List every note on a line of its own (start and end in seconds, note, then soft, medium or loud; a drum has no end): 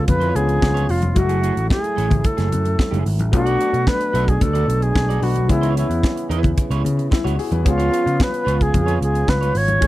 0.00 1.12 C#3 medium
0.00 0.32 F3 medium
0.00 0.32 B3 medium
0.00 1.12 B3 medium
0.00 0.33 C#4 soft
0.00 1.14 F4 medium
0.00 0.33 G#4 medium
0.07 0.30 F2 medium
0.07 0.37 B4 loud
0.07 muted clean electric guitar stroke soft
0.07 kick loud
0.07 closed hi-hat medium
0.07 muted conga medium
0.07 low conga medium
0.20 0.33 F4 medium
0.20 0.34 B4 medium
0.20 0.35 C#5 medium
0.20 closed hi-hat soft
0.34 0.58 C#2 medium
0.34 0.41 D3 soft
0.34 1.16 B3 soft
0.34 1.17 C#4 soft
0.34 0.92 G#4 loud
0.34 1.17 B4 soft
0.34 muted clean electric guitar stroke soft
0.34 closed hi-hat medium
0.34 muted conga soft
0.41 1.19 F3 soft
0.47 muted clean electric guitar stroke soft
0.47 closed hi-hat soft
0.61 0.85 C#2 medium
0.61 muted clean electric guitar stroke soft
0.61 kick loud
0.61 snare loud
0.61 high conga medium
0.74 0.87 F4 medium
0.74 0.87 B4 medium
0.74 0.88 C#5 medium
0.74 closed hi-hat soft
0.88 1.12 F1 medium
0.88 1.19 F4 medium
0.88 muted clean electric guitar stroke soft
0.88 open hi-hat medium
1.02 muted clean electric guitar stroke soft
1.02 closed hi-hat soft
1.02 high conga medium
1.15 1.50 F#1 loud
1.15 3.30 A2 medium
1.15 3.28 F#3 medium
1.15 1.23 G#3 soft
1.15 3.31 A3 medium
1.15 3.30 E4 medium
1.15 3.29 E4 medium
1.15 1.70 F#4 medium
1.15 3.30 F#4 medium
1.15 muted clean electric guitar stroke soft
1.15 kick loud
1.15 closed hi-hat medium
1.15 muted conga medium
1.22 3.32 A3 soft
1.29 1.41 A3 medium
1.29 1.42 E4 medium
1.29 1.43 G#4 medium
1.29 closed hi-hat medium
1.42 1.56 A3 medium
1.42 1.56 E4 medium
1.42 1.54 G#4 medium
1.42 closed hi-hat medium
1.56 1.68 A1 medium
1.56 muted clean electric guitar stroke medium
1.56 closed hi-hat soft
1.70 2.28 G#4 medium
1.70 muted clean electric guitar stroke soft
1.70 kick loud
1.70 snare loud
1.70 high conga medium
1.83 muted clean electric guitar stroke soft
1.83 closed hi-hat soft
1.96 2.20 A1 medium
1.96 2.14 A3 medium
1.96 2.10 E4 loud
1.96 2.09 A4 medium
1.96 closed hi-hat medium
2.10 muted clean electric guitar stroke soft
2.10 kick medium
2.10 closed hi-hat soft
2.10 low conga medium
2.24 3.07 A4 medium
2.24 muted clean electric guitar stroke soft
2.24 kick loud
2.24 closed hi-hat medium
2.24 muted conga medium
2.37 2.50 F#1 medium
2.37 2.50 A3 medium
2.37 2.50 E4 medium
2.37 2.51 G#4 medium
2.37 snare soft
2.37 closed hi-hat soft
2.51 2.74 F#2 medium
2.51 muted clean electric guitar stroke soft
2.51 closed hi-hat medium
2.51 muted conga soft
2.51 low conga medium
2.65 muted clean electric guitar stroke medium
2.65 closed hi-hat soft
2.78 muted clean electric guitar stroke soft
2.78 kick loud
2.78 snare medium
2.78 high conga medium
2.91 3.04 F#1 medium
2.91 3.04 A3 medium
2.91 3.05 E4 medium
2.91 3.05 G#4 medium
2.91 closed hi-hat soft
3.05 3.20 G#1 medium
3.05 muted clean electric guitar stroke soft
3.05 open hi-hat medium
3.19 3.33 A1 medium
3.19 muted clean electric guitar stroke soft
3.19 closed hi-hat soft
3.19 high conga medium
3.31 3.55 B1 medium
3.31 5.48 B2 medium
3.31 5.18 F#3 medium
3.31 5.48 A3 medium
3.31 5.19 A3 medium
3.31 5.18 B3 medium
3.31 3.40 C#4 soft
3.31 5.48 D4 medium
3.31 3.89 F#4 loud
3.31 muted clean electric guitar stroke soft
3.31 kick loud
3.31 closed hi-hat medium
3.31 muted conga medium
3.40 5.21 D4 medium
3.46 3.58 F#4 medium
3.46 3.59 A4 medium
3.46 3.60 D5 medium
3.46 closed hi-hat soft
3.59 3.73 F#4 medium
3.59 3.73 A4 medium
3.59 3.72 D5 medium
3.59 closed hi-hat medium
3.73 3.85 B2 medium
3.73 muted clean electric guitar stroke soft
3.73 closed hi-hat soft
3.86 4.30 B4 loud
3.86 muted clean electric guitar stroke soft
3.86 kick loud
3.86 snare loud
3.86 high conga medium
4.00 muted clean electric guitar stroke soft
4.00 closed hi-hat soft
4.13 4.36 B1 medium
4.13 4.31 F#4 medium
4.13 4.28 A4 medium
4.13 4.27 E5 loud
4.13 closed hi-hat medium
4.28 4.43 G#4 medium
4.28 muted clean electric guitar stroke soft
4.28 kick medium
4.28 closed hi-hat soft
4.41 4.64 D2 loud
4.41 4.84 A4 medium
4.41 muted clean electric guitar stroke soft
4.41 kick loud
4.41 closed hi-hat medium
4.41 muted conga medium
4.41 low conga medium
4.53 4.66 F#4 medium
4.53 4.67 A4 medium
4.53 4.68 D5 medium
4.53 closed hi-hat soft
4.67 4.90 B1 medium
4.67 muted clean electric guitar stroke soft
4.67 closed hi-hat medium
4.82 5.25 G#4 loud
4.82 muted clean electric guitar stroke soft
4.82 closed hi-hat soft
4.95 5.18 B1 medium
4.95 muted clean electric guitar stroke soft
4.95 kick loud
4.95 snare loud
4.95 high conga medium
5.09 5.21 F#4 medium
5.09 5.22 A4 medium
5.09 5.23 D5 medium
5.09 closed hi-hat soft
5.21 5.50 B1 medium
5.21 5.49 F#3 soft
5.21 5.48 B3 soft
5.21 5.49 D4 soft
5.21 5.52 F#4 medium
5.21 5.50 B4 medium
5.21 muted clean electric guitar stroke soft
5.21 open hi-hat medium
5.36 muted clean electric guitar stroke soft
5.36 closed hi-hat soft
5.36 high conga medium
5.48 5.83 C#2 loud
5.48 9.78 C#3 medium
5.48 7.61 E3 medium
5.48 7.62 B3 medium
5.48 9.78 B3 medium
5.48 7.62 C#4 soft
5.48 7.64 E4 medium
5.48 5.77 E4 medium
5.48 7.09 G#4 medium
5.48 muted clean electric guitar stroke soft
5.48 kick loud
5.48 closed hi-hat medium
5.48 muted conga medium
5.61 5.75 E4 medium
5.61 5.76 B4 medium
5.61 5.77 C#5 medium
5.61 closed hi-hat medium
5.76 5.90 E4 medium
5.76 6.28 E4 medium
5.76 5.90 B4 medium
5.76 5.89 C#5 medium
5.76 closed hi-hat medium
5.90 6.01 E2 medium
5.90 muted clean electric guitar stroke soft
5.90 closed hi-hat soft
6.03 muted clean electric guitar stroke soft
6.03 kick medium
6.03 snare loud
6.03 high conga medium
6.17 muted clean electric guitar stroke soft
6.17 closed hi-hat soft
6.29 6.52 E2 medium
6.29 6.50 E4 medium
6.29 6.43 B4 loud
6.29 6.42 E5 medium
6.29 closed hi-hat medium
6.43 muted clean electric guitar stroke soft
6.43 kick medium
6.43 closed hi-hat soft
6.43 low conga medium
6.57 muted clean electric guitar stroke soft
6.57 kick loud
6.57 closed hi-hat medium
6.57 muted conga medium
6.71 6.82 C#2 loud
6.71 6.83 E4 medium
6.71 6.84 B4 medium
6.71 6.84 C#5 medium
6.71 closed hi-hat soft
6.84 7.07 C#3 medium
6.84 muted clean electric guitar stroke soft
6.84 closed hi-hat medium
6.84 low conga medium
6.97 muted clean electric guitar stroke soft
6.97 closed hi-hat soft
7.10 7.24 E4 medium
7.10 muted clean electric guitar stroke soft
7.10 kick loud
7.10 snare medium
7.10 high conga medium
7.24 7.36 C#2 medium
7.24 7.36 E4 medium
7.24 7.38 F#4 medium
7.24 7.37 B4 medium
7.24 7.38 C#5 medium
7.24 closed hi-hat medium
7.38 7.52 G#4 medium
7.38 muted clean electric guitar stroke soft
7.38 open hi-hat medium
7.51 7.66 E2 medium
7.51 7.78 B4 medium
7.51 muted clean electric guitar stroke soft
7.51 closed hi-hat soft
7.51 high conga medium
7.64 7.88 C#2 loud
7.64 9.77 F3 medium
7.64 9.78 B3 medium
7.64 9.78 C#4 medium
7.64 9.80 F4 medium
7.64 8.24 F4 medium
7.64 9.79 G#4 medium
7.64 muted clean electric guitar stroke soft
7.64 kick loud
7.64 closed hi-hat medium
7.64 muted conga medium
7.78 7.90 F4 medium
7.78 7.91 B4 medium
7.78 7.92 C#5 medium
7.78 closed hi-hat medium
7.91 8.05 F4 medium
7.91 8.05 B4 medium
7.91 8.04 C#5 medium
7.91 closed hi-hat medium
8.05 8.17 C#3 medium
8.05 muted clean electric guitar stroke medium
8.05 closed hi-hat soft
8.19 8.64 B4 medium
8.19 muted clean electric guitar stroke soft
8.19 kick loud
8.19 snare loud
8.19 high conga medium
8.32 muted clean electric guitar stroke soft
8.32 closed hi-hat soft
8.45 8.69 C#2 medium
8.45 8.63 F4 medium
8.45 8.60 B4 medium
8.45 8.58 C#5 medium
8.45 closed hi-hat medium
8.59 9.02 G#4 medium
8.59 muted clean electric guitar stroke soft
8.59 kick medium
8.59 closed hi-hat soft
8.73 8.96 F2 medium
8.73 muted clean electric guitar stroke soft
8.73 kick loud
8.73 closed hi-hat medium
8.73 muted conga medium
8.73 low conga medium
8.86 8.99 F4 medium
8.86 9.00 B4 medium
8.86 9.00 C#5 medium
8.86 closed hi-hat soft
9.00 9.23 C#2 medium
9.00 9.30 G#4 medium
9.00 muted clean electric guitar stroke soft
9.00 closed hi-hat medium
9.14 muted clean electric guitar stroke medium
9.14 closed hi-hat soft
9.28 9.50 C#2 medium
9.28 9.59 B4 loud
9.28 muted clean electric guitar stroke soft
9.28 kick loud
9.28 snare loud
9.28 high conga medium
9.41 9.53 F4 medium
9.41 9.54 B4 medium
9.41 9.55 C#5 medium
9.41 closed hi-hat soft
9.55 9.77 G#1 medium
9.55 9.87 C#5 loud
9.55 muted clean electric guitar stroke soft
9.55 open hi-hat medium
9.68 muted clean electric guitar stroke soft
9.68 closed hi-hat soft
9.68 high conga medium
9.80 9.87 A1 loud
9.80 9.87 C#3 medium
9.80 9.87 E3 medium
9.80 9.87 A3 soft
9.80 9.87 A3 medium
9.80 9.87 C#4 soft
9.80 9.87 G#4 medium
9.80 muted clean electric guitar stroke soft
9.80 kick loud
9.80 closed hi-hat medium
9.80 muted conga medium